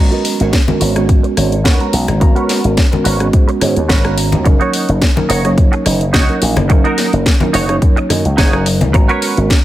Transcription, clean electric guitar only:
0.11 0.40 F#4 medium
0.11 0.40 A#4 medium
0.11 0.40 B4 medium
0.11 0.41 D#5 medium
0.67 muted clean electric guitar stroke soft
0.80 1.02 F#4 medium
0.80 1.02 A#4 medium
0.80 1.03 B4 medium
0.80 1.03 C#5 medium
1.23 muted clean electric guitar stroke loud
1.36 muted clean electric guitar stroke soft
1.64 1.93 F#4 medium
1.64 1.93 A#4 medium
1.64 1.93 B4 medium
1.64 1.94 C#5 medium
2.20 muted clean electric guitar stroke loud
2.35 2.64 F#4 medium
2.35 2.64 A#4 medium
2.35 2.65 B4 medium
2.35 2.65 C#5 medium
2.92 muted clean electric guitar stroke soft
3.04 3.26 F#4 medium
3.04 3.27 A#4 medium
3.04 3.27 B4 medium
3.04 3.27 C#5 medium
3.48 muted clean electric guitar stroke loud
3.60 muted clean electric guitar stroke soft
3.88 4.17 F#4 medium
3.88 4.17 A#4 medium
3.88 4.18 B4 medium
3.88 4.18 C#5 medium
4.45 muted clean electric guitar stroke loud
4.60 4.88 D#4 medium
4.60 4.89 F#4 medium
4.60 4.89 C#5 medium
5.16 muted clean electric guitar stroke soft
5.29 5.51 D#4 medium
5.29 5.51 F#4 medium
5.29 5.52 C#5 medium
5.72 muted clean electric guitar stroke loud
5.85 muted clean electric guitar stroke soft
6.13 6.41 D#4 medium
6.13 6.42 F#4 medium
6.13 6.42 C#5 medium
6.69 muted clean electric guitar stroke loud
6.84 7.13 D#4 medium
6.84 7.13 F#4 medium
6.84 7.14 A#4 medium
7.40 muted clean electric guitar stroke soft
7.53 7.75 D#4 medium
7.53 7.76 F#4 medium
7.53 7.76 C#5 medium
7.96 muted clean electric guitar stroke loud
8.09 muted clean electric guitar stroke soft
8.37 8.66 D#4 medium
8.37 8.66 F#4 medium
8.37 8.67 G#4 medium
8.93 muted clean electric guitar stroke loud
9.08 9.37 F#4 medium
9.08 9.37 A#4 medium
9.08 9.37 B4 medium
9.08 9.38 C#5 loud

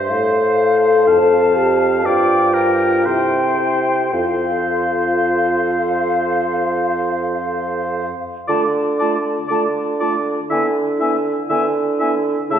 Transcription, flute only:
0.00 0.12 E5 soft
0.11 1.10 F5 soft
1.08 2.07 A5 soft
2.05 3.05 G5 soft
3.06 4.15 G5 soft
4.14 8.15 F5 soft
8.49 8.61 A5 medium
9.00 9.12 A5 soft
9.52 9.63 A5 medium
10.02 10.13 A5 soft
10.52 10.63 G#5 medium
11.01 11.12 G#5 soft
11.51 11.63 G#5 medium
12.01 12.12 G#5 soft
12.53 12.59 A5 medium

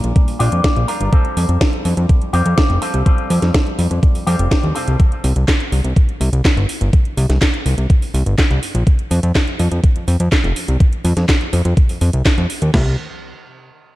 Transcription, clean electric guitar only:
0.00 0.37 A#2 medium
0.00 0.37 G3 medium
0.00 0.37 D4 medium
0.00 0.37 F4 medium
0.00 0.37 A#4 medium
0.39 0.85 A#2 medium
0.39 0.86 G3 medium
0.39 0.85 D4 medium
0.39 0.85 F4 medium
0.39 0.85 G4 loud
0.88 1.10 G3 medium
0.88 1.10 D4 medium
0.88 1.10 F4 medium
0.88 1.10 A#4 loud
1.12 2.31 G3 medium
1.12 2.31 C4 medium
1.12 2.31 F4 medium
1.12 2.31 A4 loud
2.33 2.79 G3 medium
2.33 2.79 C4 medium
2.33 2.79 F4 medium
2.33 2.79 G4 loud
2.82 3.03 G3 medium
2.82 3.03 C4 medium
2.82 3.03 F4 medium
2.82 3.03 A4 loud
3.06 4.24 G3 medium
3.06 4.24 C4 medium
3.06 4.24 F4 medium
3.06 4.24 A4 medium
4.27 4.73 G3 medium
4.27 4.73 C4 medium
4.27 4.73 F4 medium
4.27 4.73 G4 loud
4.75 4.97 C3 medium
4.75 4.97 G3 medium
4.75 4.97 C4 medium
4.75 4.97 F4 medium
4.75 4.97 A4 loud

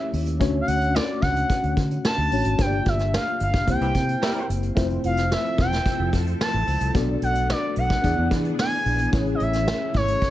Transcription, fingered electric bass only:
0.13 0.41 D#2 loud
0.41 0.60 D2 loud
0.68 0.98 D2 loud
1.22 1.42 C#2 loud
1.64 1.73 D2 loud
1.77 1.97 D3 loud
2.18 2.28 D2 medium
2.31 2.41 A1 medium
2.45 2.55 G#1 medium
2.59 2.79 G1 loud
2.86 3.16 G1 loud
3.41 3.60 G1 medium
3.68 3.78 C2 loud
3.81 3.91 C2 loud
3.95 4.15 C3 medium
4.49 4.69 F#1 medium
4.77 4.97 F1 loud
5.04 5.34 F1 medium
5.58 5.78 E1 loud
5.99 6.09 F1 loud
6.13 6.33 F2 medium
6.54 6.64 A1 medium
6.67 6.77 C#2 medium
6.81 6.91 C2 medium
6.95 7.15 B1 loud
7.22 7.52 B1 medium
7.77 7.96 B1 loud
8.04 8.14 E2 loud
8.18 8.28 E2 loud
8.31 8.51 E3 loud
8.86 9.05 A#1 loud
9.13 9.33 A1 loud
9.40 9.70 A1 loud
9.94 10.14 G#1 loud

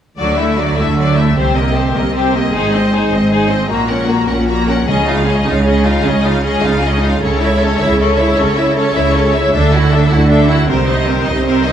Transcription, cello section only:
0.19 0.71 D3 soft
0.78 1.30 D3 soft
1.37 1.88 C3 soft
1.95 2.47 C3 soft
2.54 3.06 G#2 soft
3.13 3.65 G#2 soft
3.71 4.23 A#2 soft
4.29 4.82 A#2 soft
4.89 5.40 C#3 soft
5.46 5.98 C#3 soft
6.04 6.56 C#3 soft
6.63 7.15 C#3 soft
7.21 7.73 C#3 soft
7.81 8.32 C#3 soft
8.37 8.89 C#3 soft
8.96 9.47 C#3 soft
9.55 10.05 D3 soft
10.12 10.63 D3 medium
10.69 11.20 C3 medium
11.28 11.72 C3 soft

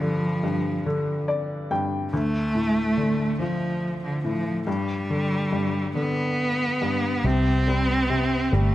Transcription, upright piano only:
0.00 0.42 G2 soft
0.00 0.85 D3 soft
0.43 1.69 G2 soft
0.86 2.09 D3 soft
1.28 1.67 D5 medium
1.71 2.11 G2 soft
1.71 2.10 G5 soft
2.13 4.64 D2 soft
2.55 4.20 A2 soft
2.97 4.63 D3 soft
3.39 4.63 F3 soft
4.24 4.66 A2 soft
4.67 5.51 G2 soft
5.10 5.94 D3 soft
5.52 6.80 G2 soft
5.95 7.20 D3 soft
6.82 7.23 G2 soft
7.25 8.08 C3 medium
7.68 8.51 G3 soft
8.10 8.75 C3 soft
8.52 8.75 G3 soft

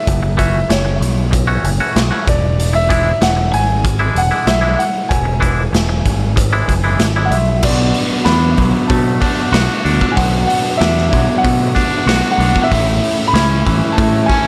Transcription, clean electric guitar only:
0.23 muted clean electric guitar stroke soft
0.37 0.59 E3 medium
0.37 0.59 A3 medium
0.37 0.59 C#4 medium
0.37 0.59 F#4 medium
0.69 muted clean electric guitar stroke soft
0.85 muted clean electric guitar stroke medium
1.31 muted clean electric guitar stroke soft
1.47 1.69 E3 medium
1.47 1.69 A3 medium
1.47 1.69 C#4 medium
1.47 1.69 F#4 medium
1.80 2.01 E3 medium
1.80 2.01 A3 medium
1.80 2.01 C#4 medium
1.80 2.01 F#4 medium
2.11 2.28 E3 medium
2.11 2.28 A3 medium
2.11 2.28 C#4 medium
2.11 2.27 F#4 medium
2.73 muted clean electric guitar stroke medium
2.89 3.10 E3 medium
2.89 3.11 G#3 medium
2.89 3.11 D4 medium
2.89 3.11 E4 medium
3.21 muted clean electric guitar stroke soft
3.36 muted clean electric guitar stroke medium
3.84 muted clean electric guitar stroke soft
3.99 4.21 E3 medium
3.99 4.21 G#3 medium
3.99 4.21 D4 medium
3.99 4.21 E4 medium
4.31 4.52 E3 medium
4.31 4.52 G#3 medium
4.31 4.52 D4 medium
4.31 4.52 E4 medium
4.61 4.84 E3 medium
4.61 4.83 G#3 medium
4.61 4.83 D4 medium
4.61 4.83 E4 medium
5.25 muted clean electric guitar stroke medium
5.40 5.62 E3 medium
5.40 5.62 G#3 medium
5.40 5.62 D4 medium
5.40 5.63 E4 medium
5.72 muted clean electric guitar stroke soft
5.89 muted clean electric guitar stroke medium
6.36 muted clean electric guitar stroke soft
6.53 6.74 E3 medium
6.53 6.74 G#3 medium
6.53 6.73 D4 medium
6.53 6.73 E4 medium
6.84 7.05 E3 medium
6.84 7.05 G#3 medium
6.84 7.05 D4 medium
6.84 7.05 E4 medium
7.16 7.37 E3 medium
7.16 7.37 G#3 medium
7.16 7.37 D4 medium
7.16 7.37 E4 medium
7.63 9.21 B2 medium
8.26 9.20 D4 medium
8.59 10.17 F#3 medium
8.91 11.43 A3 medium
9.21 9.83 D4 medium
9.53 11.11 F#4 medium
9.84 10.79 D4 medium
10.17 11.75 B2 medium
10.80 11.74 D4 medium
11.11 12.70 F#3 medium
11.43 13.96 A3 medium
11.75 12.39 D4 medium
12.08 12.71 F#4 medium
12.40 12.71 D4 medium
12.71 14.29 A2 medium
13.34 14.27 C#4 medium
13.66 14.47 E3 medium
13.96 14.47 A3 medium
14.28 14.47 C#4 medium

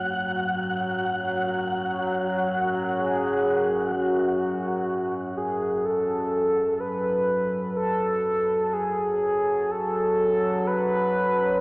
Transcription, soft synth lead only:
2.96 3.93 G#4 loud
3.92 5.39 F#4 medium
5.37 5.87 G#4 medium
5.85 6.81 A4 loud
6.80 7.76 B4 loud
7.77 8.74 A4 loud
8.73 9.72 G#4 loud
9.71 10.68 A4 loud
10.67 11.61 B4 loud

